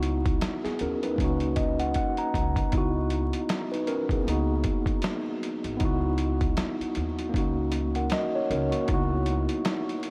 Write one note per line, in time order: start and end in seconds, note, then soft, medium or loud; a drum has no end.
0.00 0.38 C#2 medium
0.00 0.65 B3 medium
0.00 1.04 D#4 medium
0.00 1.21 E4 medium
0.00 1.20 F#4 medium
0.00 closed hi-hat medium
0.26 kick loud
0.26 closed hi-hat soft
0.41 snare loud
0.41 closed hi-hat medium
0.64 0.80 B3 medium
0.64 0.80 G#4 medium
0.64 muted upright bass stroke soft
0.64 snare soft
0.64 closed hi-hat soft
0.79 1.15 D#2 medium
0.79 1.02 C#4 medium
0.79 1.02 A#4 medium
0.79 closed hi-hat medium
1.03 1.20 D#4 medium
1.03 1.39 B4 medium
1.03 closed hi-hat soft
1.16 1.92 C#2 medium
1.16 2.68 A#3 medium
1.16 2.70 C#4 medium
1.16 kick medium
1.20 2.71 D#4 medium
1.20 closed hi-hat medium
1.24 2.72 F#4 medium
1.40 closed hi-hat soft
1.56 1.77 D#5 medium
1.56 kick medium
1.56 closed hi-hat medium
1.79 1.95 F#5 medium
1.79 closed hi-hat soft
1.94 2.17 F#5 medium
1.94 kick medium
1.94 closed hi-hat medium
2.17 2.69 A#5 medium
2.17 closed hi-hat soft
2.34 2.54 C#2 medium
2.34 kick medium
2.34 closed hi-hat medium
2.56 kick medium
2.56 closed hi-hat soft
2.69 3.09 B3 medium
2.69 3.10 D#4 medium
2.69 kick loud
2.69 closed hi-hat medium
2.73 3.30 C#2 medium
2.73 3.11 E4 medium
2.78 3.13 F#4 medium
3.10 closed hi-hat medium
3.33 closed hi-hat medium
3.49 snare loud
3.49 closed hi-hat loud
3.72 3.88 D#4 soft
3.72 3.87 B4 medium
3.72 closed hi-hat soft
3.87 4.09 C#4 medium
3.87 4.09 A#4 medium
3.87 closed hi-hat medium
4.09 4.25 B1 medium
4.09 4.25 B3 medium
4.09 4.48 G#4 medium
4.09 kick medium
4.09 closed hi-hat soft
4.24 4.61 C#2 medium
4.24 5.76 A#3 medium
4.24 5.76 B3 medium
4.28 5.78 D#4 medium
4.28 closed hi-hat medium
4.32 5.80 F#4 medium
4.64 kick medium
4.64 closed hi-hat medium
4.86 kick medium
4.86 closed hi-hat soft
5.02 snare loud
5.02 closed hi-hat medium
5.43 closed hi-hat medium
5.64 5.79 G#1 medium
5.64 closed hi-hat medium
5.77 7.29 B3 medium
5.77 7.31 D#4 medium
5.77 kick loud
5.77 closed hi-hat medium
5.81 6.54 C#2 medium
5.81 7.32 E4 medium
5.81 7.34 F#4 medium
6.18 closed hi-hat medium
6.41 kick medium
6.41 closed hi-hat soft
6.57 snare loud
6.57 closed hi-hat loud
6.80 muted upright bass stroke soft
6.80 closed hi-hat soft
6.95 7.31 D#2 medium
6.95 closed hi-hat medium
7.19 closed hi-hat soft
7.29 7.69 A#3 medium
7.29 7.71 C#4 medium
7.34 8.07 C#2 medium
7.34 7.72 D#4 medium
7.34 7.74 F#4 medium
7.34 kick medium
7.34 closed hi-hat medium
7.72 closed hi-hat medium
7.95 8.11 A#4 soft
7.95 8.11 F#5 medium
7.95 closed hi-hat soft
8.10 8.33 F#4 medium
8.10 8.32 D#5 medium
8.10 snare loud
8.10 closed hi-hat medium
8.35 8.50 C#5 medium
8.50 8.70 C#2 medium
8.50 8.72 C#4 medium
8.50 8.71 A#4 medium
8.50 closed hi-hat medium
8.71 9.08 A#3 medium
8.71 8.93 F#4 medium
8.71 closed hi-hat medium
8.86 9.45 C#2 loud
8.86 10.10 B3 medium
8.86 10.10 D#4 medium
8.86 kick loud
8.86 closed hi-hat medium
8.91 10.10 E4 medium
8.91 10.10 F#4 medium
9.26 closed hi-hat medium
9.49 closed hi-hat medium
9.65 snare loud
9.65 closed hi-hat loud
9.89 closed hi-hat soft
10.03 closed hi-hat medium